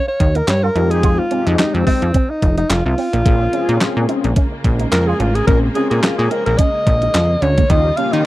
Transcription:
0.08 alto saxophone C#5, muted clean electric guitar stroke
0.20 analog synth bass D#2, kick, closed hi-hat
0.35 clean electric guitar D#4, alto saxophone A#4, closed hi-hat
0.48 analog synth bass G2, alto saxophone C#5, muted clean electric guitar stroke, snare, clap, closed hi-hat
0.63 clean electric guitar F4, alto saxophone A#4
0.75 analog synth bass F2, analog polysynth G3 C4 D#4 G4, clean electric guitar D#4, closed hi-hat
0.82 analog polysynth G#3
0.91 alto saxophone G#4, closed hi-hat
1.03 clean electric guitar F4, kick, closed hi-hat
1.19 alto saxophone F4, muted clean electric guitar stroke
1.31 analog polysynth G#3 C4 D#4 G4, clean electric guitar C4, closed hi-hat
1.47 analog synth bass F2, alto saxophone D#4, closed hi-hat
1.59 alto saxophone D#4, snare, clap, closed hi-hat
1.74 analog synth bass F2, alto saxophone C4, closed hi-hat
1.87 alto saxophone C4, clean electric guitar D#4, kick, open hi-hat
2.02 analog synth bass F2, closed hi-hat
2.14 clean electric guitar C4, kick, closed hi-hat
2.30 alto saxophone D#4, muted clean electric guitar stroke
2.42 analog synth bass F1, kick, closed hi-hat
2.58 alto saxophone D#4, clean electric guitar D#4, closed hi-hat
2.70 analog synth bass F1, alto saxophone F4, muted clean electric guitar stroke, snare, clap, closed hi-hat
2.86 analog synth bass C2, alto saxophone F4
2.98 clean electric guitar C4, open hi-hat
3.13 analog synth bass A#1, clean electric guitar A#3, closed hi-hat
3.25 analog synth bass A#1, string section C#3 G#3 A#3, clean electric guitar A#3, analog polysynth C4 C#4 F4 G#4, kick, closed hi-hat
3.41 muted clean electric guitar stroke
3.53 analog polysynth C4 C#4 F4 G#4, clean electric guitar C#4, closed hi-hat
3.69 analog synth bass A#2, closed hi-hat
3.81 snare, clap, closed hi-hat
3.97 analog synth bass A#2
4.09 clean electric guitar D#4, closed hi-hat
4.24 analog synth bass A#1, closed hi-hat
4.36 clean electric guitar C#4, kick, closed hi-hat
4.52 muted clean electric guitar stroke
4.64 analog synth bass A#1, kick, closed hi-hat
4.79 clean electric guitar D#4, closed hi-hat
4.92 analog synth bass F2, alto saxophone A#4, muted clean electric guitar stroke, snare, clap, closed hi-hat
5.07 clean electric guitar F4, alto saxophone G#4
5.20 analog synth bass A1, clean electric guitar C#4, alto saxophone F4, closed hi-hat
5.35 alto saxophone G#4, closed hi-hat
5.47 analog synth bass A#1, clean electric guitar A#3, analog polysynth C4 C#4 F4 G#4, alto saxophone A#4, kick, closed hi-hat
5.63 muted clean electric guitar stroke
5.75 analog polysynth C4 C#4 F4 G4, clean electric guitar C#4, alto saxophone G#4, closed hi-hat
5.82 analog polysynth G#4
5.91 analog synth bass A#2, alto saxophone G#4, closed hi-hat
6.03 analog synth bass A#2, alto saxophone F4, snare, clap, closed hi-hat
6.18 analog synth bass A#2, alto saxophone G#4
6.31 clean electric guitar D#4, alto saxophone A#4, closed hi-hat
6.46 analog synth bass A#1, alto saxophone A#4, closed hi-hat
6.58 clean electric guitar C#4, alto saxophone D#5, kick, closed hi-hat
6.75 muted clean electric guitar stroke
6.87 analog synth bass A#1, kick, closed hi-hat
7.02 clean electric guitar D#4, closed hi-hat
7.14 analog synth bass F2, snare, clap, closed hi-hat
7.42 analog synth bass D2, clean electric guitar C#4, alto saxophone C#5, closed hi-hat
7.58 clean electric guitar A#3, kick, closed hi-hat
7.70 analog synth bass D#2, string section C#3 G3 F4, analog polysynth A#3 C#4 F4 G4, clean electric guitar D#4, alto saxophone D#5, kick, closed hi-hat
7.86 muted clean electric guitar stroke
7.97 analog polysynth A#3 C#4 F4 G4, clean electric guitar C#4, alto saxophone F5, closed hi-hat
8.13 analog synth bass D#3, alto saxophone D#5, closed hi-hat

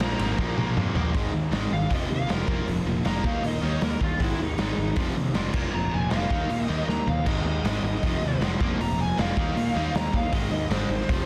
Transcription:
Already playing: distorted electric guitar A#2 F3 A#3, lead electric guitar A#5
0.00 picked electric bass A#1, distorted electric guitar A#2 F3 A#3, snare
0.19 picked electric bass G#1, distorted electric guitar A#2 F3 A#3, ride
0.38 picked electric bass A#1, distorted electric guitar A#2 F3 A#3, kick
0.57 picked electric bass A#1, distorted electric guitar A#2 F3 A#3, mid tom
0.76 picked electric bass F2, distorted electric guitar A#2 F3 A#3, mid tom
0.95 picked electric bass A#1, distorted electric guitar A#2 F3 A#3, floor tom
1.13 picked electric bass G#1, distorted electric guitar G#2 D#3 G#3, kick, open hi-hat
1.32 picked electric bass D#2, distorted electric guitar G#2 D#3
1.51 picked electric bass G#1, distorted electric guitar G#2 D#3 G#3, snare, open hi-hat
1.70 picked electric bass G#1, distorted electric guitar G#2 D#3, lead electric guitar F5
1.89 picked electric bass F1, distorted electric guitar F2 C3 F3, lead electric guitar D#5, kick, open hi-hat
2.08 picked electric bass D#2, distorted electric guitar F2 C3
2.15 lead electric guitar F5
2.27 picked electric bass F1, distorted electric guitar F2 C3 F3, snare, open hi-hat
2.32 lead electric guitar A#4
2.47 picked electric bass F1, distorted electric guitar A#2 F3 A#3, kick
2.66 picked electric bass F1, distorted electric guitar A#2 F3, open hi-hat
2.86 picked electric bass F1, distorted electric guitar A#2 F3
3.05 picked electric bass F1, distorted electric guitar A#2 F3 A#3, lead electric guitar A#5, snare, open hi-hat
3.24 picked electric bass D#2, distorted electric guitar D#3 A#3 D#4, lead electric guitar F5, kick
3.43 picked electric bass A#2, distorted electric guitar D#3 A#3, lead electric guitar D#5, open hi-hat
3.62 picked electric bass D#2, distorted electric guitar D#3 A#3 D#4, lead electric guitar C#5, snare
3.81 picked electric bass D#2, distorted electric guitar D#3 A#3, lead electric guitar A#4, snare, open hi-hat
4.01 picked electric bass D#2, distorted electric guitar D#3 A#3, lead electric guitar F4, kick
4.19 picked electric bass G#1, distorted electric guitar G#2 D#3 G#3, lead electric guitar E4, kick, open hi-hat
4.39 picked electric bass D#2, distorted electric guitar G#2 D#3
4.43 lead electric guitar D#4
4.58 picked electric bass G#1, distorted electric guitar G#2 D#3 G#3, lead electric guitar D#4, snare, open hi-hat
4.78 picked electric bass G#1, distorted electric guitar G#2 D#3
4.96 picked electric bass F1, distorted electric guitar F2 C3 F3, kick, open hi-hat
5.15 picked electric bass D#2, distorted electric guitar F2 C3
5.34 picked electric bass F1, distorted electric guitar F2 C3 F3, snare, open hi-hat
5.53 picked electric bass F1, distorted electric guitar A#2 F3 A#3, kick, crash
5.74 picked electric bass F1, distorted electric guitar A#2 F3, lead electric guitar A#5
5.93 picked electric bass F1, distorted electric guitar A#2 F3, lead electric guitar G#5
6.10 picked electric bass F1, distorted electric guitar A#2 F3 A#3, lead electric guitar F5, snare, open hi-hat
6.30 picked electric bass D#2, distorted electric guitar D#3 A#3 D#4, kick
6.50 picked electric bass A#2, distorted electric guitar D#3 A#3, open hi-hat
6.63 lead electric guitar D#5
6.68 picked electric bass D#2, distorted electric guitar D#3 A#3 D#4, snare
6.88 picked electric bass D#2, distorted electric guitar D#3 A#3, lead electric guitar A#5, snare
7.07 picked electric bass D#2, distorted electric guitar D#3 A#3, lead electric guitar F5, floor tom
7.26 picked electric bass G#1, distorted electric guitar G#2 D#3 G#3, lead electric guitar D#5, kick, crash
7.45 picked electric bass D#2, distorted electric guitar G#2 D#3, lead electric guitar D#5
7.64 picked electric bass G#1, distorted electric guitar G#2 D#3 G#3, lead electric guitar D#5, snare, open hi-hat
7.83 picked electric bass G#1, distorted electric guitar G#2 D#3
7.95 snare
8.03 picked electric bass F1, distorted electric guitar F2 C3 F3, kick, open hi-hat
8.21 picked electric bass D#2, distorted electric guitar F2 C3, snare
8.41 picked electric bass F1, distorted electric guitar F2 C3 F3, snare, open hi-hat
8.60 picked electric bass F1, distorted electric guitar A#2 F3 A#3, kick
8.79 picked electric bass F1, distorted electric guitar A#2 F3, lead electric guitar A#5, open hi-hat
8.98 picked electric bass F1, distorted electric guitar A#2 F3, lead electric guitar G#5
9.17 picked electric bass F1, distorted electric guitar A#2 F3 A#3, lead electric guitar F5, snare, open hi-hat
9.37 picked electric bass D#2, distorted electric guitar D#3 A#3 D#4, kick
9.56 picked electric bass A#2, distorted electric guitar D#3 A#3, open hi-hat
9.75 picked electric bass D#2, distorted electric guitar D#3 A#3 D#4, snare
9.94 picked electric bass D#2, distorted electric guitar D#3 A#3, lead electric guitar A#5, snare, open hi-hat
10.13 picked electric bass D#2, distorted electric guitar D#3 A#3, lead electric guitar F5, kick
10.33 picked electric bass G#1, distorted electric guitar G#2 D#3 G#3, lead electric guitar D#5, kick, open hi-hat
10.51 picked electric bass D#2, distorted electric guitar G#2 D#3, lead electric guitar D#5
10.70 picked electric bass G#1, distorted electric guitar G#2 D#3 G#3, lead electric guitar C5, snare, open hi-hat
10.89 picked electric bass G#1, distorted electric guitar G#2 D#3
11.01 snare
11.09 picked electric bass F1, distorted electric guitar F2 C3 F3, kick, open hi-hat

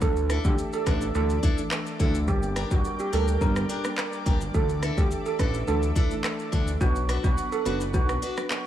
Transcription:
0.01 analog synth bass D2, synth stab E3 A3 D4 A4, steel pan A4, analog synth pad A4 D5 E5 D6, kick, shaker
0.16 shaker
0.29 steel-string acoustic guitar D4 E4 A4, cross-stick, closed hi-hat, shaker
0.45 analog synth bass D2, synth stab E3 A3 D4 A4, steel pan G4, kick, shaker
0.58 shaker
0.73 steel pan A4, shaker
0.86 analog synth bass A1, synth stab E3 A3 D4 A4, steel-string acoustic guitar D4 E4 A4, steel pan B4, kick, cross-stick, closed hi-hat, shaker
1.01 shaker
1.15 analog synth bass D2, synth stab E3 A3 D4 A4, steel pan A4, shaker
1.30 shaker
1.43 steel-string acoustic guitar D4 E4 A4, kick, closed hi-hat, shaker
1.58 synth stab E3 A3 D4 A4, shaker
1.71 cross-stick, clap, shaker
1.86 shaker
1.99 analog synth bass D2, synth stab E3 A3 D4 A4, steel-string acoustic guitar D4 E4 A4, kick, closed hi-hat, shaker
2.15 shaker
2.28 analog synth bass G1, synth stab G3 A#3 D4 A#4, steel pan G4, analog synth pad A#4 D5 G5, kick, shaker
2.43 shaker
2.56 steel-string acoustic guitar D4 G4 A#4, cross-stick, closed hi-hat, shaker
2.71 analog synth bass G1, synth stab G3 A#3 D4 A#4, steel pan F#4, kick, shaker
2.85 shaker
2.99 steel pan G4, shaker
3.12 analog synth bass D2, synth stab G3 A#3 D4 A#4, steel-string acoustic guitar D4 G4 A#4, steel pan A4, closed hi-hat, shaker
3.28 muted steel-string acoustic guitar stroke, shaker
3.41 analog synth bass G1, synth stab G3 A#3 D4 A#4, steel pan A#4, kick, shaker
3.56 cross-stick, shaker
3.69 steel-string acoustic guitar D4 G4 A#4, closed hi-hat, shaker
3.84 synth stab G3 A#3 D4 A#4, cross-stick, shaker
3.98 cross-stick, clap, shaker
4.13 shaker
4.26 analog synth bass G1, synth stab G3 A#3 D4 A#4, steel-string acoustic guitar D4 G4 A#4, kick, closed hi-hat, shaker
4.41 muted steel-string acoustic guitar stroke, shaker
4.54 analog synth bass D2, synth stab E3 A3 D4 A4, analog synth pad A4 E5, steel pan A4, kick, shaker
4.69 shaker
4.82 steel-string acoustic guitar D4 E4 A4, cross-stick, closed hi-hat, shaker
4.97 analog synth bass D2, synth stab E3 A3 D4 A4, steel pan G4, kick, shaker
5.11 shaker
5.26 steel pan A4, shaker
5.39 analog synth bass A1, synth stab E3 A3 D4 A4, steel-string acoustic guitar D4 E4 A4, steel pan B4, kick, cross-stick, closed hi-hat, shaker
5.54 shaker
5.67 analog synth bass D2, synth stab E3 A3 D4 A4, steel pan A4, shaker
5.83 shaker
5.95 steel-string acoustic guitar D4 E4 A4, kick, closed hi-hat, shaker
6.11 synth stab E3 A3 D4 A4, shaker
6.24 cross-stick, clap, shaker
6.39 shaker
6.52 analog synth bass D2, synth stab E3 A3 D4 A4, steel-string acoustic guitar D4 E4 A4, kick, closed hi-hat, shaker
6.68 shaker
6.80 analog synth bass B1, synth stab F#3 B3 D4 B4, steel pan F#4, analog synth pad B4 F#5, kick, shaker
6.96 shaker
7.09 steel-string acoustic guitar D4 F#4 B4, cross-stick, closed hi-hat, shaker
7.24 analog synth bass B1, synth stab F#3 B3 D4 B4, steel pan F#4, kick, shaker
7.38 shaker
7.52 steel pan A4, shaker
7.65 analog synth bass F#1, synth stab F#3 B3 D4 B4, steel-string acoustic guitar D4 F#4 B4, steel pan B4, closed hi-hat, shaker
7.80 muted steel-string acoustic guitar stroke, shaker
7.94 analog synth bass B1, synth stab F#3 B3 D4 B4, steel pan F#4, kick, shaker
8.09 cross-stick, shaker
8.22 steel-string acoustic guitar D4 F#4 B4, closed hi-hat, shaker
8.37 synth stab F#3 B3 D4 B4, cross-stick, shaker
8.51 cross-stick, clap, shaker

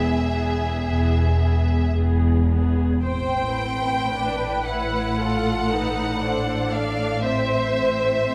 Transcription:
Already playing: double bass section E1, cello section E2, viola section B3 G#4, violin section G#4 E5
0.31 viola section B3 G#4
0.85 double bass section E1, cello section E2, viola section B3 G#4
1.39 viola section B3 G#4
1.93 double bass section E1, cello section E2, viola section B3 G#4
2.49 viola section B3 G#4
3.04 double bass section A1, cello section A2, viola section C4 C5, violin section C5 G5
3.60 violin section B4
4.14 viola section D4 B4
4.67 viola section E4, violin section F#5
5.19 viola section F4 A4, violin section A4
5.71 viola section D#4, violin section B4
6.22 viola section D4 A4, violin section C5
6.70 violin section D5 F5
7.23 viola section C4 C5, violin section C5 E5
7.79 viola section C4

